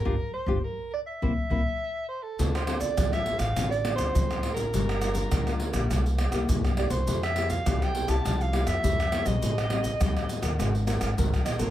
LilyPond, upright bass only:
\new Staff \with { instrumentName = "Upright bass" } { \clef bass \time 4/4 \key c \mixolydian \tempo 4 = 102 g,,16 r8 g,,16 r4 c,16 r16 c,16 r4 r16 | \key d \minor d,4 a,,8. a,,16 a,,8. d,16 d,8. a,,16 | g,,4 d,8. bes,,16 c,8. c,16 c,8. c,16 | f,4 c,8. c,16 c,8. f,16 f,8. bes,,16 |
a,,4 ees,8. ees,16 gis,,8. gis,,16 gis,,16 bis,,16 ais,,16 gis,,16 | }